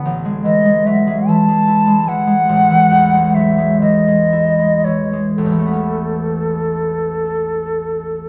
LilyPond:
<<
  \new Staff \with { instrumentName = "Flute" } { \time 6/8 \key a \lydian \tempo 4. = 42 r8 dis''8 e''8 a''4 fis''8~ | fis''4 e''8 dis''4 cis''8 | a'2. | }
  \new Staff \with { instrumentName = "Harp" } { \clef bass \time 6/8 \key a \lydian <a,, e'>16 gis16 e16 gis16 fis16 gis16 e16 gis16 e'16 gis16 e16 gis16 | a,,16 e16 e,16 gis16 fis16 gis16 e16 gis16 e'16 gis16 e16 gis16 | <a,, e, e a b cis'>2. | }
>>